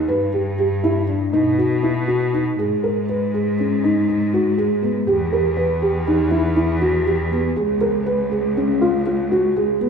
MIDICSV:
0, 0, Header, 1, 3, 480
1, 0, Start_track
1, 0, Tempo, 498339
1, 83, Time_signature, 5, 3, 24, 8
1, 9530, End_track
2, 0, Start_track
2, 0, Title_t, "Felt piano"
2, 0, Program_c, 0, 0
2, 80, Note_on_c, 0, 71, 79
2, 277, Note_off_c, 0, 71, 0
2, 322, Note_on_c, 0, 67, 57
2, 518, Note_off_c, 0, 67, 0
2, 566, Note_on_c, 0, 67, 68
2, 761, Note_off_c, 0, 67, 0
2, 805, Note_on_c, 0, 64, 69
2, 1000, Note_off_c, 0, 64, 0
2, 1045, Note_on_c, 0, 62, 53
2, 1240, Note_off_c, 0, 62, 0
2, 1281, Note_on_c, 0, 63, 84
2, 1478, Note_off_c, 0, 63, 0
2, 1525, Note_on_c, 0, 66, 58
2, 1722, Note_off_c, 0, 66, 0
2, 1763, Note_on_c, 0, 64, 59
2, 1963, Note_off_c, 0, 64, 0
2, 2000, Note_on_c, 0, 66, 61
2, 2203, Note_off_c, 0, 66, 0
2, 2245, Note_on_c, 0, 63, 53
2, 2447, Note_off_c, 0, 63, 0
2, 2491, Note_on_c, 0, 68, 72
2, 2691, Note_off_c, 0, 68, 0
2, 2732, Note_on_c, 0, 70, 57
2, 2932, Note_off_c, 0, 70, 0
2, 2979, Note_on_c, 0, 71, 61
2, 3177, Note_off_c, 0, 71, 0
2, 3217, Note_on_c, 0, 68, 65
2, 3415, Note_off_c, 0, 68, 0
2, 3459, Note_on_c, 0, 61, 52
2, 3656, Note_off_c, 0, 61, 0
2, 3697, Note_on_c, 0, 63, 72
2, 3894, Note_off_c, 0, 63, 0
2, 3932, Note_on_c, 0, 63, 57
2, 4131, Note_off_c, 0, 63, 0
2, 4175, Note_on_c, 0, 66, 70
2, 4372, Note_off_c, 0, 66, 0
2, 4407, Note_on_c, 0, 68, 75
2, 4607, Note_off_c, 0, 68, 0
2, 4644, Note_on_c, 0, 59, 58
2, 4844, Note_off_c, 0, 59, 0
2, 4884, Note_on_c, 0, 67, 80
2, 5083, Note_off_c, 0, 67, 0
2, 5129, Note_on_c, 0, 70, 61
2, 5325, Note_off_c, 0, 70, 0
2, 5364, Note_on_c, 0, 71, 70
2, 5561, Note_off_c, 0, 71, 0
2, 5606, Note_on_c, 0, 67, 81
2, 5801, Note_off_c, 0, 67, 0
2, 5847, Note_on_c, 0, 63, 63
2, 6042, Note_off_c, 0, 63, 0
2, 6078, Note_on_c, 0, 64, 75
2, 6276, Note_off_c, 0, 64, 0
2, 6320, Note_on_c, 0, 64, 58
2, 6518, Note_off_c, 0, 64, 0
2, 6562, Note_on_c, 0, 66, 69
2, 6761, Note_off_c, 0, 66, 0
2, 6800, Note_on_c, 0, 67, 67
2, 7000, Note_off_c, 0, 67, 0
2, 7044, Note_on_c, 0, 59, 62
2, 7244, Note_off_c, 0, 59, 0
2, 7286, Note_on_c, 0, 68, 79
2, 7486, Note_off_c, 0, 68, 0
2, 7524, Note_on_c, 0, 70, 62
2, 7725, Note_off_c, 0, 70, 0
2, 7765, Note_on_c, 0, 71, 68
2, 7965, Note_off_c, 0, 71, 0
2, 8005, Note_on_c, 0, 68, 68
2, 8206, Note_off_c, 0, 68, 0
2, 8246, Note_on_c, 0, 61, 58
2, 8447, Note_off_c, 0, 61, 0
2, 8488, Note_on_c, 0, 65, 87
2, 8688, Note_off_c, 0, 65, 0
2, 8731, Note_on_c, 0, 65, 62
2, 8928, Note_off_c, 0, 65, 0
2, 8971, Note_on_c, 0, 66, 69
2, 9166, Note_off_c, 0, 66, 0
2, 9212, Note_on_c, 0, 68, 77
2, 9406, Note_off_c, 0, 68, 0
2, 9446, Note_on_c, 0, 59, 65
2, 9530, Note_off_c, 0, 59, 0
2, 9530, End_track
3, 0, Start_track
3, 0, Title_t, "Cello"
3, 0, Program_c, 1, 42
3, 0, Note_on_c, 1, 39, 58
3, 87, Note_on_c, 1, 43, 69
3, 101, Note_off_c, 1, 39, 0
3, 1280, Note_on_c, 1, 47, 64
3, 1295, Note_off_c, 1, 43, 0
3, 2469, Note_off_c, 1, 47, 0
3, 2492, Note_on_c, 1, 44, 68
3, 4889, Note_on_c, 1, 40, 77
3, 4903, Note_off_c, 1, 44, 0
3, 7291, Note_on_c, 1, 37, 73
3, 7305, Note_off_c, 1, 40, 0
3, 9530, Note_off_c, 1, 37, 0
3, 9530, End_track
0, 0, End_of_file